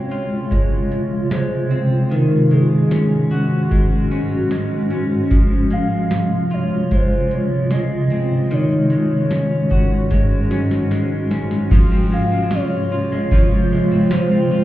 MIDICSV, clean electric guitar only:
0, 0, Header, 1, 2, 480
1, 0, Start_track
1, 0, Key_signature, -5, "major"
1, 0, Tempo, 800000
1, 1267, Time_signature, 4, 2, 24, 8
1, 8785, End_track
2, 0, Start_track
2, 0, Title_t, "Clean electric guitar"
2, 0, Program_c, 0, 27
2, 0, Note_on_c, 0, 56, 50
2, 0, Note_on_c, 0, 60, 52
2, 69, Note_on_c, 0, 65, 52
2, 304, Note_off_c, 0, 56, 0
2, 306, Note_on_c, 0, 56, 55
2, 549, Note_off_c, 0, 60, 0
2, 784, Note_off_c, 0, 56, 0
2, 787, Note_on_c, 0, 56, 51
2, 1026, Note_on_c, 0, 60, 52
2, 1267, Note_on_c, 0, 51, 71
2, 1315, Note_off_c, 0, 60, 0
2, 1316, Note_off_c, 0, 65, 0
2, 1505, Note_off_c, 0, 56, 0
2, 1508, Note_on_c, 0, 56, 52
2, 1746, Note_on_c, 0, 61, 55
2, 1988, Note_on_c, 0, 66, 50
2, 2225, Note_off_c, 0, 56, 0
2, 2228, Note_on_c, 0, 56, 54
2, 2465, Note_off_c, 0, 61, 0
2, 2467, Note_on_c, 0, 61, 51
2, 2706, Note_off_c, 0, 56, 0
2, 2709, Note_on_c, 0, 56, 52
2, 2946, Note_off_c, 0, 61, 0
2, 2948, Note_on_c, 0, 61, 51
2, 3185, Note_off_c, 0, 51, 0
2, 3187, Note_on_c, 0, 53, 71
2, 3235, Note_off_c, 0, 66, 0
2, 3424, Note_off_c, 0, 56, 0
2, 3426, Note_on_c, 0, 56, 51
2, 3907, Note_on_c, 0, 65, 53
2, 4148, Note_off_c, 0, 56, 0
2, 4150, Note_on_c, 0, 56, 54
2, 4627, Note_off_c, 0, 56, 0
2, 4629, Note_on_c, 0, 56, 55
2, 4867, Note_off_c, 0, 61, 0
2, 4870, Note_on_c, 0, 60, 48
2, 5105, Note_off_c, 0, 53, 0
2, 5108, Note_on_c, 0, 51, 74
2, 5155, Note_off_c, 0, 65, 0
2, 5156, Note_off_c, 0, 60, 0
2, 5345, Note_off_c, 0, 56, 0
2, 5348, Note_on_c, 0, 56, 52
2, 5586, Note_on_c, 0, 61, 52
2, 5827, Note_on_c, 0, 66, 53
2, 6066, Note_off_c, 0, 56, 0
2, 6068, Note_on_c, 0, 56, 56
2, 6304, Note_off_c, 0, 61, 0
2, 6307, Note_on_c, 0, 61, 51
2, 6546, Note_off_c, 0, 56, 0
2, 6549, Note_on_c, 0, 56, 52
2, 6784, Note_off_c, 0, 61, 0
2, 6786, Note_on_c, 0, 61, 49
2, 7026, Note_off_c, 0, 51, 0
2, 7029, Note_off_c, 0, 66, 0
2, 7029, Note_on_c, 0, 53, 79
2, 7032, Note_on_c, 0, 65, 67
2, 7147, Note_off_c, 0, 61, 0
2, 7149, Note_on_c, 0, 60, 64
2, 7267, Note_off_c, 0, 56, 0
2, 7269, Note_on_c, 0, 56, 56
2, 7383, Note_off_c, 0, 60, 0
2, 7390, Note_on_c, 0, 60, 55
2, 7504, Note_off_c, 0, 65, 0
2, 7512, Note_on_c, 0, 65, 67
2, 7629, Note_off_c, 0, 60, 0
2, 7744, Note_off_c, 0, 65, 0
2, 7752, Note_on_c, 0, 65, 61
2, 7870, Note_off_c, 0, 56, 0
2, 7872, Note_on_c, 0, 56, 60
2, 7984, Note_off_c, 0, 53, 0
2, 7987, Note_off_c, 0, 65, 0
2, 7991, Note_on_c, 0, 53, 87
2, 7995, Note_on_c, 0, 65, 74
2, 8229, Note_off_c, 0, 56, 0
2, 8231, Note_on_c, 0, 56, 65
2, 8349, Note_on_c, 0, 60, 61
2, 8461, Note_off_c, 0, 65, 0
2, 8468, Note_on_c, 0, 65, 71
2, 8582, Note_off_c, 0, 60, 0
2, 8589, Note_on_c, 0, 60, 61
2, 8702, Note_off_c, 0, 65, 0
2, 8709, Note_on_c, 0, 65, 67
2, 8785, Note_off_c, 0, 53, 0
2, 8785, Note_off_c, 0, 56, 0
2, 8785, Note_off_c, 0, 60, 0
2, 8785, Note_off_c, 0, 65, 0
2, 8785, End_track
0, 0, End_of_file